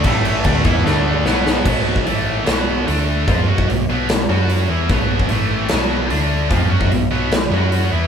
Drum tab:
CC |x-x-x-x---------|x---------------|----------------|----------------|
HH |----------------|----o---o---o---|o---o---o---o---|o---o---o---o---|
SD |--------o---o-o-|--------o-------|--------o-------|--------o-------|
BD |o---o-o---------|o--o------------|o--o------------|o--o------------|

CC |----------------|
HH |o---o---o---o---|
SD |--------o-------|
BD |o--o------------|